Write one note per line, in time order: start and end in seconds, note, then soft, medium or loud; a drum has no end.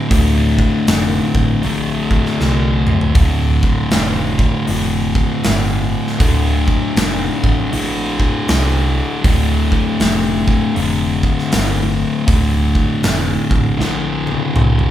0.00 0.10 A2 medium
0.00 0.13 D3 medium
0.10 0.60 D1 loud
0.10 1.62 D2 medium
0.10 1.62 A2 loud
0.10 1.65 D3 medium
0.10 kick loud
0.10 open hi-hat medium
0.58 kick medium
0.87 1.19 F1 medium
0.87 snare loud
0.87 open hi-hat medium
1.34 1.53 A1 medium
1.34 kick medium
1.62 2.14 A#1 medium
1.62 3.14 D2 medium
1.62 3.15 A2 medium
1.62 3.18 D3 medium
1.62 open hi-hat medium
2.11 kick medium
2.26 snare soft
2.40 2.90 C2 medium
2.40 snare medium
2.87 mid tom medium
3.01 floor tom medium
3.15 3.65 D1 loud
3.15 4.66 D2 medium
3.15 4.67 A2 medium
3.15 4.70 D3 medium
3.15 kick loud
3.15 open hi-hat medium
3.63 kick medium
3.91 4.43 F1 medium
3.91 snare loud
3.91 open hi-hat medium
4.39 kick medium
4.67 5.18 F1 medium
4.67 6.19 D2 medium
4.67 6.19 A2 medium
4.67 6.23 D3 medium
4.67 open hi-hat medium
5.15 kick medium
5.44 5.94 G1 medium
5.44 snare loud
5.44 open hi-hat medium
6.07 snare soft
6.20 6.70 D1 medium
6.20 7.71 D2 medium
6.20 7.71 A2 medium
6.20 7.74 D3 loud
6.20 kick loud
6.20 open hi-hat medium
6.68 kick medium
6.96 7.27 F1 loud
6.96 snare loud
6.96 open hi-hat medium
7.44 7.62 A1 medium
7.44 kick medium
7.71 8.22 A#1 medium
7.71 9.23 D2 medium
7.71 9.23 A2 medium
7.71 9.26 D3 medium
7.71 open hi-hat medium
8.20 kick medium
8.48 8.98 C2 medium
8.48 snare loud
8.48 open hi-hat medium
9.23 9.74 D1 medium
9.23 10.75 D2 medium
9.23 10.75 A2 medium
9.23 10.78 D3 medium
9.23 kick loud
9.23 open hi-hat medium
9.72 kick medium
10.00 10.49 F1 medium
10.00 snare loud
10.00 open hi-hat medium
10.48 kick medium
10.75 11.26 F1 medium
10.75 12.26 D2 medium
10.75 12.27 A2 medium
10.75 12.29 D3 medium
10.75 open hi-hat medium
11.23 kick medium
11.39 snare soft
11.52 12.02 G1 medium
11.52 snare loud
11.52 open hi-hat medium
12.26 12.77 D1 medium
12.26 13.77 D2 medium
12.26 13.78 A2 medium
12.26 13.79 D3 medium
12.26 kick loud
12.26 open hi-hat medium
12.75 kick medium
13.03 13.35 F1 medium
13.03 snare loud
13.03 open hi-hat medium
13.50 13.69 A1 medium
13.50 kick medium
13.78 14.28 A#1 medium
13.78 14.91 D2 medium
13.78 14.91 A2 medium
13.78 14.91 D3 medium
13.78 snare medium
14.27 high tom medium
14.55 14.91 C2 medium
14.55 mid tom medium
14.79 mid tom medium